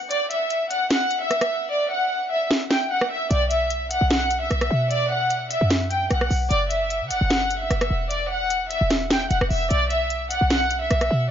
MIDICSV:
0, 0, Header, 1, 4, 480
1, 0, Start_track
1, 0, Key_signature, 2, "minor"
1, 0, Tempo, 400000
1, 127, Time_signature, 4, 2, 24, 8
1, 13570, End_track
2, 0, Start_track
2, 0, Title_t, "Violin section"
2, 0, Program_c, 0, 48
2, 123, Note_on_c, 0, 74, 104
2, 352, Note_off_c, 0, 74, 0
2, 367, Note_on_c, 0, 76, 76
2, 819, Note_off_c, 0, 76, 0
2, 843, Note_on_c, 0, 78, 85
2, 1063, Note_off_c, 0, 78, 0
2, 1078, Note_on_c, 0, 78, 96
2, 1427, Note_off_c, 0, 78, 0
2, 1455, Note_on_c, 0, 76, 81
2, 2012, Note_off_c, 0, 76, 0
2, 2042, Note_on_c, 0, 74, 96
2, 2271, Note_off_c, 0, 74, 0
2, 2284, Note_on_c, 0, 78, 82
2, 2737, Note_off_c, 0, 78, 0
2, 2763, Note_on_c, 0, 76, 84
2, 2992, Note_off_c, 0, 76, 0
2, 3247, Note_on_c, 0, 79, 88
2, 3474, Note_off_c, 0, 79, 0
2, 3489, Note_on_c, 0, 78, 79
2, 3715, Note_off_c, 0, 78, 0
2, 3730, Note_on_c, 0, 76, 86
2, 3956, Note_off_c, 0, 76, 0
2, 3968, Note_on_c, 0, 74, 105
2, 4194, Note_off_c, 0, 74, 0
2, 4206, Note_on_c, 0, 76, 75
2, 4658, Note_off_c, 0, 76, 0
2, 4693, Note_on_c, 0, 78, 82
2, 4917, Note_off_c, 0, 78, 0
2, 4930, Note_on_c, 0, 78, 101
2, 5274, Note_off_c, 0, 78, 0
2, 5300, Note_on_c, 0, 76, 78
2, 5855, Note_off_c, 0, 76, 0
2, 5883, Note_on_c, 0, 74, 110
2, 6112, Note_off_c, 0, 74, 0
2, 6125, Note_on_c, 0, 78, 84
2, 6577, Note_off_c, 0, 78, 0
2, 6606, Note_on_c, 0, 76, 73
2, 6833, Note_off_c, 0, 76, 0
2, 7081, Note_on_c, 0, 79, 79
2, 7311, Note_off_c, 0, 79, 0
2, 7327, Note_on_c, 0, 78, 90
2, 7554, Note_off_c, 0, 78, 0
2, 7804, Note_on_c, 0, 74, 106
2, 8032, Note_off_c, 0, 74, 0
2, 8048, Note_on_c, 0, 76, 77
2, 8499, Note_off_c, 0, 76, 0
2, 8525, Note_on_c, 0, 78, 88
2, 8744, Note_off_c, 0, 78, 0
2, 8759, Note_on_c, 0, 78, 96
2, 9108, Note_off_c, 0, 78, 0
2, 9136, Note_on_c, 0, 76, 80
2, 9692, Note_off_c, 0, 76, 0
2, 9723, Note_on_c, 0, 74, 98
2, 9952, Note_off_c, 0, 74, 0
2, 9964, Note_on_c, 0, 78, 86
2, 10417, Note_off_c, 0, 78, 0
2, 10442, Note_on_c, 0, 76, 87
2, 10671, Note_off_c, 0, 76, 0
2, 10927, Note_on_c, 0, 79, 83
2, 11154, Note_off_c, 0, 79, 0
2, 11168, Note_on_c, 0, 78, 79
2, 11394, Note_off_c, 0, 78, 0
2, 11409, Note_on_c, 0, 76, 89
2, 11635, Note_off_c, 0, 76, 0
2, 11648, Note_on_c, 0, 74, 107
2, 11874, Note_off_c, 0, 74, 0
2, 11885, Note_on_c, 0, 76, 75
2, 12337, Note_off_c, 0, 76, 0
2, 12371, Note_on_c, 0, 78, 82
2, 12596, Note_off_c, 0, 78, 0
2, 12610, Note_on_c, 0, 78, 103
2, 12954, Note_off_c, 0, 78, 0
2, 12980, Note_on_c, 0, 76, 80
2, 13535, Note_off_c, 0, 76, 0
2, 13570, End_track
3, 0, Start_track
3, 0, Title_t, "808-style bass"
3, 0, Program_c, 1, 38
3, 3967, Note_on_c, 1, 35, 113
3, 4781, Note_off_c, 1, 35, 0
3, 4814, Note_on_c, 1, 35, 103
3, 5383, Note_off_c, 1, 35, 0
3, 5407, Note_on_c, 1, 35, 104
3, 5638, Note_off_c, 1, 35, 0
3, 5647, Note_on_c, 1, 47, 104
3, 6691, Note_off_c, 1, 47, 0
3, 6734, Note_on_c, 1, 42, 100
3, 7303, Note_off_c, 1, 42, 0
3, 7326, Note_on_c, 1, 35, 106
3, 7557, Note_off_c, 1, 35, 0
3, 7566, Note_on_c, 1, 35, 109
3, 7797, Note_off_c, 1, 35, 0
3, 7807, Note_on_c, 1, 30, 108
3, 8414, Note_on_c, 1, 49, 95
3, 8432, Note_off_c, 1, 30, 0
3, 8526, Note_on_c, 1, 30, 99
3, 8544, Note_off_c, 1, 49, 0
3, 8648, Note_off_c, 1, 30, 0
3, 8654, Note_on_c, 1, 30, 105
3, 9223, Note_off_c, 1, 30, 0
3, 9247, Note_on_c, 1, 30, 106
3, 9477, Note_off_c, 1, 30, 0
3, 9486, Note_on_c, 1, 28, 104
3, 10531, Note_off_c, 1, 28, 0
3, 10574, Note_on_c, 1, 28, 102
3, 11143, Note_off_c, 1, 28, 0
3, 11167, Note_on_c, 1, 28, 104
3, 11289, Note_off_c, 1, 28, 0
3, 11294, Note_on_c, 1, 28, 100
3, 11399, Note_off_c, 1, 28, 0
3, 11406, Note_on_c, 1, 28, 110
3, 11637, Note_off_c, 1, 28, 0
3, 11647, Note_on_c, 1, 35, 114
3, 12460, Note_off_c, 1, 35, 0
3, 12494, Note_on_c, 1, 35, 101
3, 13063, Note_off_c, 1, 35, 0
3, 13088, Note_on_c, 1, 35, 106
3, 13318, Note_off_c, 1, 35, 0
3, 13328, Note_on_c, 1, 47, 106
3, 13570, Note_off_c, 1, 47, 0
3, 13570, End_track
4, 0, Start_track
4, 0, Title_t, "Drums"
4, 128, Note_on_c, 9, 42, 76
4, 248, Note_off_c, 9, 42, 0
4, 367, Note_on_c, 9, 42, 73
4, 487, Note_off_c, 9, 42, 0
4, 606, Note_on_c, 9, 42, 73
4, 726, Note_off_c, 9, 42, 0
4, 847, Note_on_c, 9, 42, 82
4, 967, Note_off_c, 9, 42, 0
4, 1086, Note_on_c, 9, 42, 69
4, 1087, Note_on_c, 9, 38, 117
4, 1206, Note_off_c, 9, 42, 0
4, 1207, Note_off_c, 9, 38, 0
4, 1327, Note_on_c, 9, 42, 66
4, 1447, Note_off_c, 9, 42, 0
4, 1568, Note_on_c, 9, 37, 74
4, 1568, Note_on_c, 9, 42, 80
4, 1688, Note_off_c, 9, 37, 0
4, 1688, Note_off_c, 9, 42, 0
4, 1695, Note_on_c, 9, 42, 47
4, 1696, Note_on_c, 9, 37, 95
4, 1815, Note_off_c, 9, 42, 0
4, 1816, Note_off_c, 9, 37, 0
4, 3008, Note_on_c, 9, 38, 116
4, 3128, Note_off_c, 9, 38, 0
4, 3247, Note_on_c, 9, 38, 102
4, 3367, Note_off_c, 9, 38, 0
4, 3617, Note_on_c, 9, 37, 98
4, 3737, Note_off_c, 9, 37, 0
4, 3968, Note_on_c, 9, 42, 76
4, 4088, Note_off_c, 9, 42, 0
4, 4208, Note_on_c, 9, 42, 75
4, 4328, Note_off_c, 9, 42, 0
4, 4445, Note_on_c, 9, 42, 74
4, 4565, Note_off_c, 9, 42, 0
4, 4688, Note_on_c, 9, 42, 82
4, 4808, Note_off_c, 9, 42, 0
4, 4926, Note_on_c, 9, 42, 72
4, 4927, Note_on_c, 9, 38, 120
4, 5046, Note_off_c, 9, 42, 0
4, 5047, Note_off_c, 9, 38, 0
4, 5167, Note_on_c, 9, 42, 65
4, 5287, Note_off_c, 9, 42, 0
4, 5408, Note_on_c, 9, 37, 76
4, 5408, Note_on_c, 9, 42, 77
4, 5528, Note_off_c, 9, 37, 0
4, 5528, Note_off_c, 9, 42, 0
4, 5535, Note_on_c, 9, 42, 45
4, 5536, Note_on_c, 9, 37, 96
4, 5655, Note_off_c, 9, 42, 0
4, 5656, Note_off_c, 9, 37, 0
4, 5888, Note_on_c, 9, 42, 77
4, 6008, Note_off_c, 9, 42, 0
4, 6365, Note_on_c, 9, 42, 74
4, 6485, Note_off_c, 9, 42, 0
4, 6607, Note_on_c, 9, 42, 75
4, 6727, Note_off_c, 9, 42, 0
4, 6846, Note_on_c, 9, 38, 122
4, 6846, Note_on_c, 9, 42, 73
4, 6966, Note_off_c, 9, 38, 0
4, 6966, Note_off_c, 9, 42, 0
4, 7087, Note_on_c, 9, 42, 65
4, 7207, Note_off_c, 9, 42, 0
4, 7327, Note_on_c, 9, 37, 77
4, 7327, Note_on_c, 9, 42, 78
4, 7447, Note_off_c, 9, 37, 0
4, 7447, Note_off_c, 9, 42, 0
4, 7455, Note_on_c, 9, 37, 94
4, 7567, Note_on_c, 9, 46, 52
4, 7575, Note_off_c, 9, 37, 0
4, 7687, Note_off_c, 9, 46, 0
4, 7808, Note_on_c, 9, 42, 74
4, 7928, Note_off_c, 9, 42, 0
4, 8047, Note_on_c, 9, 42, 75
4, 8167, Note_off_c, 9, 42, 0
4, 8285, Note_on_c, 9, 42, 74
4, 8405, Note_off_c, 9, 42, 0
4, 8527, Note_on_c, 9, 42, 82
4, 8647, Note_off_c, 9, 42, 0
4, 8765, Note_on_c, 9, 42, 71
4, 8766, Note_on_c, 9, 38, 124
4, 8885, Note_off_c, 9, 42, 0
4, 8886, Note_off_c, 9, 38, 0
4, 9006, Note_on_c, 9, 42, 67
4, 9126, Note_off_c, 9, 42, 0
4, 9247, Note_on_c, 9, 37, 75
4, 9247, Note_on_c, 9, 42, 77
4, 9367, Note_off_c, 9, 37, 0
4, 9367, Note_off_c, 9, 42, 0
4, 9374, Note_on_c, 9, 42, 47
4, 9375, Note_on_c, 9, 37, 98
4, 9494, Note_off_c, 9, 42, 0
4, 9495, Note_off_c, 9, 37, 0
4, 9727, Note_on_c, 9, 42, 75
4, 9847, Note_off_c, 9, 42, 0
4, 10205, Note_on_c, 9, 42, 75
4, 10325, Note_off_c, 9, 42, 0
4, 10447, Note_on_c, 9, 42, 79
4, 10567, Note_off_c, 9, 42, 0
4, 10686, Note_on_c, 9, 42, 72
4, 10687, Note_on_c, 9, 38, 118
4, 10806, Note_off_c, 9, 42, 0
4, 10807, Note_off_c, 9, 38, 0
4, 10926, Note_on_c, 9, 38, 106
4, 10927, Note_on_c, 9, 42, 68
4, 11046, Note_off_c, 9, 38, 0
4, 11047, Note_off_c, 9, 42, 0
4, 11168, Note_on_c, 9, 42, 77
4, 11288, Note_off_c, 9, 42, 0
4, 11295, Note_on_c, 9, 37, 97
4, 11407, Note_on_c, 9, 46, 51
4, 11415, Note_off_c, 9, 37, 0
4, 11527, Note_off_c, 9, 46, 0
4, 11646, Note_on_c, 9, 42, 77
4, 11766, Note_off_c, 9, 42, 0
4, 11886, Note_on_c, 9, 42, 73
4, 12006, Note_off_c, 9, 42, 0
4, 12124, Note_on_c, 9, 42, 76
4, 12244, Note_off_c, 9, 42, 0
4, 12367, Note_on_c, 9, 42, 84
4, 12487, Note_off_c, 9, 42, 0
4, 12605, Note_on_c, 9, 42, 69
4, 12606, Note_on_c, 9, 38, 122
4, 12725, Note_off_c, 9, 42, 0
4, 12726, Note_off_c, 9, 38, 0
4, 12847, Note_on_c, 9, 42, 67
4, 12967, Note_off_c, 9, 42, 0
4, 13087, Note_on_c, 9, 37, 76
4, 13087, Note_on_c, 9, 42, 80
4, 13207, Note_off_c, 9, 37, 0
4, 13207, Note_off_c, 9, 42, 0
4, 13214, Note_on_c, 9, 42, 47
4, 13215, Note_on_c, 9, 37, 94
4, 13334, Note_off_c, 9, 42, 0
4, 13335, Note_off_c, 9, 37, 0
4, 13570, End_track
0, 0, End_of_file